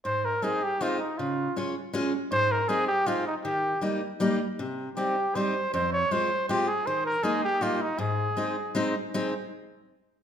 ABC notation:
X:1
M:3/4
L:1/8
Q:1/4=159
K:Ab
V:1 name="Trumpet"
c B A G F E | F2 z4 | c B A G F E | G2 z4 |
z2 G2 c2 | c d c2 G A | c B A G F E | A4 z2 |
z6 |]
V:2 name="Steel-string acoustic guitar"
A,,2 [A,CE] z [A,CE] z | D,2 [A,DF] z [A,DF] z | A,,2 [A,CE] z [A,CE] z | E,2 [G,B,E] z [G,B,E] z |
C,2 [G,CE] z [G,CE] z | F,,2 [A,CF] z [A,CF] z | E,2 [A,B,E] z [G,B,E] z | A,,2 [A,CE] z [A,CE] z |
[A,CE] z4 z |]